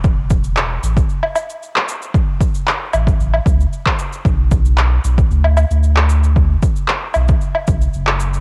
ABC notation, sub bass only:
X:1
M:4/4
L:1/16
Q:1/4=114
K:Bm
V:1 name="Sub bass" clef=bass
E,,,6 A,,, z8 z | z6 A,,, z A,,, z C,, z4 z | B,,,6 B,,, z D,,3 D,,4- D,,- | D,,2 z4 B,,, z3 B,,, z F,,,4 |]